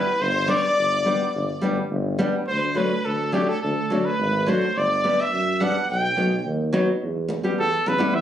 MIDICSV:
0, 0, Header, 1, 6, 480
1, 0, Start_track
1, 0, Key_signature, 1, "major"
1, 0, Tempo, 567108
1, 176, Time_signature, 4, 2, 24, 8
1, 6950, End_track
2, 0, Start_track
2, 0, Title_t, "Violin"
2, 0, Program_c, 0, 40
2, 0, Note_on_c, 0, 71, 73
2, 181, Note_on_c, 0, 72, 88
2, 194, Note_off_c, 0, 71, 0
2, 407, Note_on_c, 0, 74, 94
2, 420, Note_off_c, 0, 72, 0
2, 1377, Note_off_c, 0, 74, 0
2, 2099, Note_on_c, 0, 72, 77
2, 2176, Note_on_c, 0, 71, 53
2, 2189, Note_off_c, 0, 72, 0
2, 2213, Note_on_c, 0, 72, 77
2, 2226, Note_off_c, 0, 71, 0
2, 2342, Note_on_c, 0, 71, 75
2, 2355, Note_off_c, 0, 72, 0
2, 2582, Note_on_c, 0, 69, 74
2, 2595, Note_off_c, 0, 71, 0
2, 2828, Note_on_c, 0, 67, 71
2, 2840, Note_off_c, 0, 69, 0
2, 2947, Note_off_c, 0, 67, 0
2, 2953, Note_on_c, 0, 69, 80
2, 3062, Note_off_c, 0, 69, 0
2, 3074, Note_on_c, 0, 69, 64
2, 3454, Note_on_c, 0, 71, 70
2, 3467, Note_off_c, 0, 69, 0
2, 3806, Note_on_c, 0, 72, 67
2, 3818, Note_off_c, 0, 71, 0
2, 4028, Note_off_c, 0, 72, 0
2, 4033, Note_on_c, 0, 74, 77
2, 4392, Note_on_c, 0, 76, 85
2, 4405, Note_off_c, 0, 74, 0
2, 4741, Note_on_c, 0, 78, 79
2, 4753, Note_off_c, 0, 76, 0
2, 4976, Note_off_c, 0, 78, 0
2, 4981, Note_on_c, 0, 79, 73
2, 5427, Note_off_c, 0, 79, 0
2, 6950, End_track
3, 0, Start_track
3, 0, Title_t, "Cornet"
3, 0, Program_c, 1, 56
3, 0, Note_on_c, 1, 71, 91
3, 179, Note_on_c, 1, 72, 110
3, 192, Note_off_c, 1, 71, 0
3, 419, Note_off_c, 1, 72, 0
3, 425, Note_on_c, 1, 74, 102
3, 1352, Note_off_c, 1, 74, 0
3, 2098, Note_on_c, 1, 72, 105
3, 2339, Note_on_c, 1, 71, 85
3, 2352, Note_off_c, 1, 72, 0
3, 2585, Note_on_c, 1, 69, 84
3, 2597, Note_off_c, 1, 71, 0
3, 2825, Note_on_c, 1, 67, 74
3, 2838, Note_off_c, 1, 69, 0
3, 2953, Note_on_c, 1, 69, 81
3, 2966, Note_off_c, 1, 67, 0
3, 3064, Note_off_c, 1, 69, 0
3, 3069, Note_on_c, 1, 69, 82
3, 3431, Note_on_c, 1, 71, 81
3, 3443, Note_off_c, 1, 69, 0
3, 3795, Note_on_c, 1, 72, 86
3, 3807, Note_off_c, 1, 71, 0
3, 4046, Note_on_c, 1, 74, 102
3, 4059, Note_off_c, 1, 72, 0
3, 4408, Note_on_c, 1, 76, 88
3, 4420, Note_off_c, 1, 74, 0
3, 4767, Note_on_c, 1, 78, 78
3, 4780, Note_off_c, 1, 76, 0
3, 4996, Note_off_c, 1, 78, 0
3, 5002, Note_on_c, 1, 79, 98
3, 5439, Note_off_c, 1, 79, 0
3, 6430, Note_on_c, 1, 69, 103
3, 6669, Note_on_c, 1, 71, 89
3, 6682, Note_off_c, 1, 69, 0
3, 6896, Note_on_c, 1, 76, 122
3, 6909, Note_off_c, 1, 71, 0
3, 6950, Note_off_c, 1, 76, 0
3, 6950, End_track
4, 0, Start_track
4, 0, Title_t, "Nylon-string guitar"
4, 0, Program_c, 2, 24
4, 402, Note_on_c, 2, 55, 57
4, 408, Note_on_c, 2, 59, 64
4, 413, Note_on_c, 2, 62, 73
4, 530, Note_off_c, 2, 55, 0
4, 533, Note_off_c, 2, 59, 0
4, 536, Note_off_c, 2, 62, 0
4, 893, Note_on_c, 2, 55, 68
4, 898, Note_on_c, 2, 59, 58
4, 904, Note_on_c, 2, 62, 78
4, 1017, Note_off_c, 2, 55, 0
4, 1019, Note_off_c, 2, 59, 0
4, 1022, Note_off_c, 2, 62, 0
4, 1367, Note_on_c, 2, 55, 79
4, 1377, Note_on_c, 2, 59, 68
4, 1384, Note_on_c, 2, 62, 81
4, 1495, Note_off_c, 2, 55, 0
4, 1500, Note_off_c, 2, 59, 0
4, 1503, Note_off_c, 2, 62, 0
4, 1850, Note_on_c, 2, 55, 86
4, 1855, Note_on_c, 2, 59, 80
4, 1864, Note_on_c, 2, 62, 93
4, 1977, Note_off_c, 2, 55, 0
4, 1980, Note_off_c, 2, 59, 0
4, 1984, Note_off_c, 2, 62, 0
4, 2325, Note_on_c, 2, 54, 60
4, 2332, Note_on_c, 2, 57, 63
4, 2342, Note_on_c, 2, 62, 64
4, 2455, Note_off_c, 2, 54, 0
4, 2459, Note_off_c, 2, 57, 0
4, 2464, Note_off_c, 2, 62, 0
4, 2811, Note_on_c, 2, 54, 73
4, 2817, Note_on_c, 2, 57, 70
4, 2826, Note_on_c, 2, 62, 77
4, 2939, Note_off_c, 2, 54, 0
4, 2942, Note_off_c, 2, 57, 0
4, 2946, Note_off_c, 2, 62, 0
4, 3303, Note_on_c, 2, 54, 61
4, 3312, Note_on_c, 2, 57, 51
4, 3316, Note_on_c, 2, 62, 71
4, 3425, Note_off_c, 2, 54, 0
4, 3430, Note_off_c, 2, 57, 0
4, 3431, Note_off_c, 2, 62, 0
4, 3779, Note_on_c, 2, 54, 77
4, 3787, Note_on_c, 2, 57, 63
4, 3794, Note_on_c, 2, 62, 81
4, 3903, Note_off_c, 2, 54, 0
4, 3907, Note_off_c, 2, 57, 0
4, 3911, Note_off_c, 2, 62, 0
4, 4266, Note_on_c, 2, 55, 72
4, 4272, Note_on_c, 2, 59, 56
4, 4275, Note_on_c, 2, 62, 73
4, 4387, Note_off_c, 2, 55, 0
4, 4388, Note_off_c, 2, 59, 0
4, 4391, Note_off_c, 2, 62, 0
4, 4743, Note_on_c, 2, 55, 69
4, 4752, Note_on_c, 2, 59, 66
4, 4758, Note_on_c, 2, 62, 66
4, 4864, Note_off_c, 2, 55, 0
4, 4868, Note_off_c, 2, 59, 0
4, 4870, Note_off_c, 2, 62, 0
4, 5216, Note_on_c, 2, 54, 58
4, 5223, Note_on_c, 2, 59, 63
4, 5230, Note_on_c, 2, 63, 62
4, 5340, Note_off_c, 2, 54, 0
4, 5343, Note_off_c, 2, 59, 0
4, 5347, Note_off_c, 2, 63, 0
4, 5692, Note_on_c, 2, 54, 91
4, 5698, Note_on_c, 2, 59, 80
4, 5703, Note_on_c, 2, 63, 93
4, 5816, Note_off_c, 2, 54, 0
4, 5819, Note_off_c, 2, 59, 0
4, 5821, Note_off_c, 2, 63, 0
4, 6292, Note_on_c, 2, 55, 56
4, 6297, Note_on_c, 2, 59, 53
4, 6301, Note_on_c, 2, 67, 66
4, 6414, Note_off_c, 2, 55, 0
4, 6417, Note_off_c, 2, 59, 0
4, 6419, Note_off_c, 2, 67, 0
4, 6757, Note_on_c, 2, 55, 72
4, 6764, Note_on_c, 2, 59, 68
4, 6772, Note_on_c, 2, 64, 75
4, 6885, Note_off_c, 2, 55, 0
4, 6888, Note_off_c, 2, 59, 0
4, 6892, Note_off_c, 2, 64, 0
4, 6950, End_track
5, 0, Start_track
5, 0, Title_t, "Tuba"
5, 0, Program_c, 3, 58
5, 172, Note_on_c, 3, 31, 98
5, 463, Note_off_c, 3, 31, 0
5, 657, Note_on_c, 3, 31, 84
5, 947, Note_off_c, 3, 31, 0
5, 1138, Note_on_c, 3, 31, 100
5, 1284, Note_off_c, 3, 31, 0
5, 1374, Note_on_c, 3, 31, 80
5, 1521, Note_off_c, 3, 31, 0
5, 1615, Note_on_c, 3, 31, 107
5, 1906, Note_off_c, 3, 31, 0
5, 2101, Note_on_c, 3, 38, 88
5, 2391, Note_off_c, 3, 38, 0
5, 2589, Note_on_c, 3, 38, 69
5, 2877, Note_off_c, 3, 38, 0
5, 3071, Note_on_c, 3, 38, 94
5, 3214, Note_off_c, 3, 38, 0
5, 3312, Note_on_c, 3, 38, 76
5, 3455, Note_off_c, 3, 38, 0
5, 3544, Note_on_c, 3, 32, 95
5, 3833, Note_off_c, 3, 32, 0
5, 4027, Note_on_c, 3, 31, 88
5, 4315, Note_off_c, 3, 31, 0
5, 4499, Note_on_c, 3, 42, 79
5, 4788, Note_off_c, 3, 42, 0
5, 4993, Note_on_c, 3, 35, 93
5, 5134, Note_off_c, 3, 35, 0
5, 5236, Note_on_c, 3, 35, 93
5, 5376, Note_off_c, 3, 35, 0
5, 5461, Note_on_c, 3, 39, 98
5, 5748, Note_off_c, 3, 39, 0
5, 5947, Note_on_c, 3, 40, 90
5, 6231, Note_off_c, 3, 40, 0
5, 6426, Note_on_c, 3, 40, 68
5, 6566, Note_off_c, 3, 40, 0
5, 6656, Note_on_c, 3, 40, 76
5, 6727, Note_off_c, 3, 40, 0
5, 6894, Note_on_c, 3, 52, 99
5, 6950, Note_off_c, 3, 52, 0
5, 6950, End_track
6, 0, Start_track
6, 0, Title_t, "Muted nylon-string guitar strokes"
6, 6166, Note_on_c, 9, 29, 87
6, 6250, Note_off_c, 9, 29, 0
6, 6654, Note_on_c, 9, 29, 71
6, 6739, Note_off_c, 9, 29, 0
6, 6950, End_track
0, 0, End_of_file